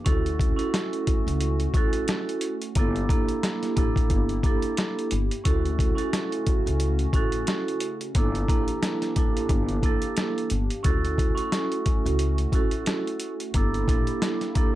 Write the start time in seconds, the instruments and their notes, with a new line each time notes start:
0.04 upright bass D2, analog synth pad A3 C#4 F#4, vibraphone C#4 E4 F#4 A4, kick, closed hi-hat
0.26 closed hi-hat
0.40 kick, closed hi-hat
0.56 vibraphone C#4 E4 F#4 A4, closed hi-hat
0.74 snare, closed hi-hat
0.93 closed hi-hat
1.07 kick, closed hi-hat
1.27 upright bass C#2, closed hi-hat
1.41 closed hi-hat
1.60 closed hi-hat
1.74 upright bass A1, vibraphone C#4 E4 F#4 A4, kick, closed hi-hat
1.93 closed hi-hat
2.08 snare, closed hi-hat
2.29 closed hi-hat
2.41 closed hi-hat
2.62 closed hi-hat
2.75 upright bass G1, analog synth pad A#3 E4 G4, vibraphone A#3 D4 E4, kick, closed hi-hat
2.79 vibraphone A4
2.96 closed hi-hat
3.09 upright bass A#1, vibraphone A#3 D4 E4 A4, kick, closed hi-hat
3.29 closed hi-hat
3.43 snare, closed hi-hat
3.63 snare, closed hi-hat
3.76 upright bass A1, vibraphone A#3 D4 E4 A4, kick, closed hi-hat
3.96 kick, closed hi-hat
4.10 upright bass G1, kick, closed hi-hat
4.29 closed hi-hat
4.43 vibraphone A#3 D4 E4 A4, kick, closed hi-hat
4.62 closed hi-hat
4.77 snare, closed hi-hat
4.99 closed hi-hat
5.11 upright bass G1, closed hi-hat
5.31 closed hi-hat
5.44 upright bass D2, analog synth pad C#3 A3 C#4 F#4, vibraphone C#4 E4 F#4 A4, kick, closed hi-hat
5.65 closed hi-hat
5.79 kick, closed hi-hat
5.95 vibraphone C#4 E4 F#4 A4, closed hi-hat
6.13 snare, closed hi-hat
6.32 closed hi-hat
6.47 kick, closed hi-hat
6.66 upright bass C#2, closed hi-hat
6.80 closed hi-hat
6.99 closed hi-hat
7.13 upright bass A1, vibraphone C#4 E4 F#4 A4, kick, closed hi-hat
7.32 closed hi-hat
7.47 snare, closed hi-hat
7.68 closed hi-hat
7.80 closed hi-hat
8.01 closed hi-hat
8.15 upright bass G1, analog synth pad E3 A#3 D4 G4, vibraphone A#3 D4 E4 A4, kick, closed hi-hat
8.35 closed hi-hat
8.48 upright bass A#1, vibraphone A#3 D4 E4 A4, kick, closed hi-hat
8.68 closed hi-hat
8.83 snare, closed hi-hat
9.02 snare, closed hi-hat
9.16 upright bass A1, vibraphone A#3 D4 E4 A4, kick, closed hi-hat
9.37 closed hi-hat
9.49 upright bass G1, kick, closed hi-hat
9.69 closed hi-hat
9.83 vibraphone A#3 D4 E4 A4, kick, closed hi-hat
10.02 closed hi-hat
10.17 snare, closed hi-hat
10.38 closed hi-hat
10.50 upright bass G1, closed hi-hat
10.70 closed hi-hat
10.83 upright bass D2, analog synth pad A3 C#4 F#4, vibraphone C#4 E4 F#4 A4, kick, closed hi-hat
11.05 closed hi-hat
11.18 kick, closed hi-hat
11.35 vibraphone C#4 E4 F#4 A4, closed hi-hat
11.52 snare, closed hi-hat
11.72 closed hi-hat
11.86 kick, closed hi-hat
12.05 upright bass C#2, closed hi-hat
12.19 closed hi-hat
12.38 closed hi-hat
12.52 upright bass A1, vibraphone C#4 E4 F#4 A4, kick, closed hi-hat
12.71 closed hi-hat
12.86 snare, closed hi-hat
13.07 closed hi-hat
13.20 closed hi-hat
13.40 closed hi-hat
13.54 upright bass G1, analog synth pad A#3 E4 G4, vibraphone A#3 D4 E4 A4, kick, closed hi-hat
13.74 closed hi-hat
13.88 upright bass A#1, vibraphone A#3 D4 E4 A4, kick, closed hi-hat
14.07 closed hi-hat
14.22 snare, closed hi-hat
14.41 snare, closed hi-hat
14.55 upright bass A1, vibraphone A#3 D4 E4 A4, kick, closed hi-hat